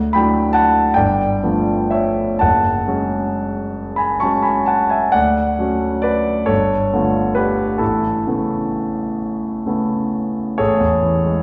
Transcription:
0.00 0.14 D2 soft
0.13 0.92 F#3 soft
0.13 0.93 A3 soft
0.13 0.93 D4 soft
0.13 0.51 G5 soft
0.13 0.54 B5 medium
0.17 0.93 E4 soft
0.53 0.93 F#5 medium
0.53 0.95 A5 medium
0.94 1.41 G1 soft
0.94 1.90 D5 soft
0.94 1.93 G5 medium
1.43 2.40 F3 soft
1.43 2.40 A3 soft
1.43 2.40 B3 soft
1.43 2.41 D4 soft
1.91 2.39 C#5 soft
1.91 2.42 E5 soft
2.39 2.87 F#1 soft
2.39 3.94 F#5 soft
2.39 3.97 A5 medium
2.88 4.17 F#3 soft
2.88 4.17 G#3 soft
2.88 4.17 C#4 soft
2.88 4.17 F#4 soft
3.96 4.20 G#5 soft
3.96 4.20 B5 soft
4.20 5.10 F#3 soft
4.20 5.10 G#3 soft
4.20 5.11 C#4 soft
4.20 5.11 F#4 soft
4.20 4.43 A5 soft
4.20 4.44 C#6 soft
4.43 4.66 G#5 soft
4.43 4.67 B5 soft
4.66 4.89 F#5 soft
4.66 4.90 A5 medium
4.90 5.13 E5 soft
4.90 5.14 G#5 soft
5.12 5.59 D2 soft
5.12 6.00 D5 soft
5.12 6.05 F#5 medium
5.59 6.45 F#3 soft
5.59 6.45 A3 soft
5.59 6.46 C#4 soft
5.59 6.46 F#4 soft
6.02 6.46 B4 soft
6.02 6.48 D5 medium
6.46 6.91 G1 soft
6.46 7.31 A4 soft
6.46 7.35 C#5 medium
6.93 7.77 D3 soft
6.93 7.77 A3 soft
6.93 7.77 B3 soft
6.93 7.77 F4 soft
7.35 7.77 G4 soft
7.35 7.80 B4 medium
7.78 8.24 A1 soft
7.78 8.26 E4 soft
7.78 9.18 A4 soft
8.27 9.62 C#3 soft
8.27 9.63 A3 soft
8.27 9.63 B3 soft
8.27 9.63 E4 soft
9.66 10.56 C#3 soft
9.66 10.56 A3 soft
9.66 10.56 B3 soft
9.66 10.56 E4 soft
10.58 11.43 A1 soft
10.58 11.43 G#4 soft
10.58 11.43 A4 soft
10.58 11.43 C#5 medium
10.80 11.15 E2 soft
11.03 11.37 E3 soft
11.25 11.43 G#3 soft

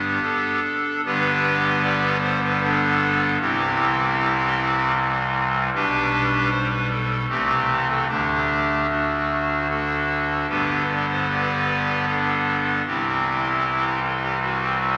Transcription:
0.00 0.18 G1 medium
0.00 0.19 G2 medium
0.00 0.19 G3 medium
0.00 0.60 B3 medium
0.00 0.20 D4 medium
0.00 0.60 G4 medium
0.22 1.01 D4 medium
0.22 1.01 A4 loud
1.05 3.37 G1 medium
1.05 3.37 G2 medium
1.05 3.37 D3 medium
1.05 3.37 G3 medium
1.05 3.37 B3 medium
1.05 1.82 D4 medium
1.05 1.82 G4 medium
1.05 1.82 B4 loud
1.83 2.17 G4 medium
1.83 2.17 B4 loud
1.83 2.17 D5 loud
2.23 2.40 C5 loud
2.44 2.60 B4 medium
2.63 3.38 D4 medium
2.63 3.38 A4 loud
3.40 5.70 C2 medium
3.40 5.70 C3 medium
3.40 5.70 E3 medium
3.40 5.70 G3 medium
3.40 4.92 C4 medium
3.40 4.92 E4 medium
3.40 4.92 G4 loud
5.74 7.26 B1 medium
5.74 7.26 B2 medium
5.74 7.26 G3 medium
5.74 6.49 D4 medium
5.74 6.49 G4 medium
5.74 6.49 B4 loud
6.50 6.67 C5 loud
6.70 6.87 B4 loud
6.90 7.23 A4 loud
7.29 8.07 C2 medium
7.29 8.07 C3 medium
7.29 8.07 E3 medium
7.29 8.05 A3 medium
7.29 8.07 C4 medium
7.29 7.88 G4 loud
7.88 8.06 A4 medium
8.07 10.45 D1 medium
8.07 10.45 D2 medium
8.07 10.45 D3 medium
8.07 8.88 A3 medium
8.07 8.87 D4 medium
8.07 8.86 G4 loud
8.89 9.68 A3 medium
8.89 9.67 D4 medium
8.89 9.67 F#4 medium
9.69 10.47 D4 medium
9.69 10.47 F#4 medium
9.69 10.47 A4 medium
10.48 12.82 G1 medium
10.48 12.82 G2 medium
10.48 12.82 D3 medium
10.48 12.81 G3 medium
10.48 12.82 B3 soft
10.48 10.83 D4 medium
10.48 10.83 G4 medium
10.48 10.83 B4 loud
10.88 11.06 D5 medium
11.10 11.26 C5 loud
11.29 12.06 G4 medium
11.29 12.06 B4 medium
11.29 12.06 D5 loud
12.08 12.84 D4 medium
12.08 12.84 A4 loud
12.86 14.97 C2 medium
12.86 14.97 C3 medium
12.86 14.97 E3 medium
12.86 14.97 G3 soft
12.86 13.99 C4 medium
12.86 13.99 E4 medium
12.86 13.99 G4 medium
14.03 14.19 A4 loud
14.23 14.39 G4 medium
14.42 14.97 C4 medium
14.42 14.97 F#4 loud

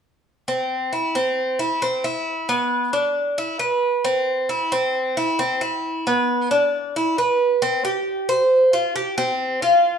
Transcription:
0.48 0.91 C4 medium
0.93 1.14 E4 medium
1.15 1.58 C4 medium
1.59 1.81 E4 medium
1.82 2.04 C4 medium
2.04 2.48 E4 medium
2.49 2.92 B3 medium
2.93 3.37 D4 medium
3.38 3.59 E4 medium
3.59 4.03 B4 medium
4.05 4.48 C4 medium
4.49 4.71 E4 medium
4.72 5.15 C4 medium
5.17 5.39 E4 medium
5.39 5.61 C4 medium
5.61 6.05 E4 medium
6.07 6.50 B3 medium
6.51 6.94 D4 medium
6.96 7.17 E4 medium
7.18 7.61 B4 medium
7.62 7.84 C4 medium
7.85 8.28 G4 medium
8.29 8.72 C5 medium
8.73 8.95 F4 medium
8.96 9.17 G4 medium
9.18 9.61 C4 medium
9.62 9.98 F4 medium

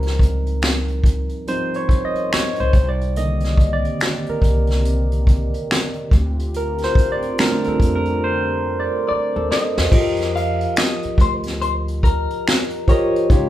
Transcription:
0.00 1.27 C#2 medium
0.00 1.46 F3 soft
0.00 1.47 G3 soft
0.00 1.47 C4 soft
0.00 1.47 D#4 medium
0.00 2.76 A#4 medium
0.00 closed hi-hat soft
0.06 snare soft
0.19 kick medium
0.19 closed hi-hat medium
0.46 closed hi-hat soft
0.62 finger snap medium
0.62 snare loud
0.62 closed hi-hat medium
0.88 closed hi-hat soft
1.04 kick medium
1.04 closed hi-hat medium
1.29 closed hi-hat soft
1.47 1.85 F3 medium
1.47 1.86 G3 soft
1.47 1.86 C4 soft
1.47 1.86 D#4 medium
1.47 1.77 C5 medium
1.47 closed hi-hat medium
1.74 2.05 C#5 medium
1.74 closed hi-hat soft
1.89 kick medium
1.89 closed hi-hat medium
2.05 2.33 D#5 medium
2.15 closed hi-hat soft
2.32 2.61 C#5 loud
2.32 finger snap medium
2.32 muted upright bass stroke soft
2.32 snare loud
2.32 closed hi-hat medium
2.56 closed hi-hat soft
2.60 2.73 C2 medium
2.60 2.89 C5 medium
2.73 3.83 C2 loud
2.73 kick loud
2.73 closed hi-hat medium
2.89 3.17 D5 medium
3.01 closed hi-hat soft
3.16 6.09 C3 medium
3.16 4.39 D3 medium
3.16 4.39 D#3 soft
3.16 4.39 A#3 soft
3.16 6.09 A#3 medium
3.16 6.09 C4 medium
3.16 6.09 G4 medium
3.16 3.75 D#5 medium
3.16 closed hi-hat medium
3.40 snare soft
3.40 closed hi-hat soft
3.57 kick medium
3.57 closed hi-hat medium
3.73 4.31 D5 medium
3.85 closed hi-hat soft
4.00 finger snap medium
4.00 snare loud
4.00 closed hi-hat medium
4.26 5.10 A#4 medium
4.26 muted upright bass stroke soft
4.26 closed hi-hat soft
4.42 5.49 C2 medium
4.42 kick medium
4.42 closed hi-hat medium
4.67 snare soft
4.67 closed hi-hat soft
4.85 closed hi-hat medium
5.12 closed hi-hat soft
5.27 kick medium
5.27 closed hi-hat medium
5.54 closed hi-hat soft
5.71 finger snap medium
5.71 snare loud
5.71 closed hi-hat medium
5.94 closed hi-hat soft
6.11 6.85 D2 medium
6.11 9.88 D3 medium
6.11 9.88 A3 medium
6.11 9.89 C4 medium
6.11 9.89 F4 medium
6.11 9.89 G4 loud
6.11 kick loud
6.11 closed hi-hat medium
6.39 closed hi-hat soft
6.54 6.82 A#4 medium
6.54 closed hi-hat medium
6.78 snare soft
6.78 closed hi-hat soft
6.84 7.12 C5 medium
6.95 kick loud
6.95 closed hi-hat medium
7.12 7.40 D5 loud
7.22 closed hi-hat soft
7.38 8.61 G3 medium
7.38 8.62 A3 medium
7.38 8.62 C4 medium
7.38 8.62 D4 medium
7.38 7.63 A#4 medium
7.38 finger snap medium
7.38 snare loud
7.38 closed hi-hat medium
7.64 7.96 A4 medium
7.64 7.68 A#4 medium
7.64 muted upright bass stroke soft
7.64 closed hi-hat soft
7.80 8.87 F2 medium
7.80 kick loud
7.80 closed hi-hat medium
7.95 8.21 A#4 medium
8.05 closed hi-hat soft
8.24 8.76 C5 loud
8.80 9.37 D5 medium
9.09 9.47 D5 medium
9.09 muted upright bass stroke soft
9.36 9.49 D#2 medium
9.36 9.88 A4 medium
9.52 10.31 D#5 loud
9.52 snare loud
9.78 9.91 E2 medium
9.78 snare medium
9.91 10.65 F2 medium
9.91 11.38 F3 medium
9.91 11.39 F4 medium
9.91 11.39 G4 medium
9.91 10.01 A4 soft
9.91 11.40 D#5 medium
9.91 kick loud
9.91 crash loud
10.00 11.43 A#4 medium
10.17 snare soft
10.17 closed hi-hat medium
10.36 10.78 F5 loud
10.36 closed hi-hat medium
10.61 closed hi-hat soft
10.76 11.21 D#5 medium
10.76 finger snap loud
10.76 snare loud
10.76 closed hi-hat medium
11.03 muted upright bass stroke soft
11.03 closed hi-hat soft
11.18 12.25 D2 loud
11.18 11.32 C5 medium
11.18 kick loud
11.18 closed hi-hat medium
11.43 snare soft
11.43 closed hi-hat soft
11.62 11.73 C5 medium
11.62 closed hi-hat medium
11.88 closed hi-hat soft
12.03 12.91 A#4 medium
12.03 kick medium
12.03 closed hi-hat medium
12.30 closed hi-hat soft
12.48 finger snap medium
12.48 snare loud
12.48 closed hi-hat medium
12.70 closed hi-hat soft
12.87 13.25 F3 medium
12.87 13.25 F4 medium
12.87 13.26 G4 medium
12.87 13.26 A#4 medium
12.87 13.49 C#5 medium
12.87 13.26 D#5 medium
12.87 kick medium
12.87 closed hi-hat medium
13.16 closed hi-hat medium
13.29 13.49 C#2 loud
13.29 13.49 C#3 medium
13.29 13.49 G#3 medium
13.29 13.49 D#4 medium
13.29 13.49 F4 medium
13.29 13.49 G4 medium
13.29 13.49 C#5 medium
13.29 kick loud
13.29 closed hi-hat medium

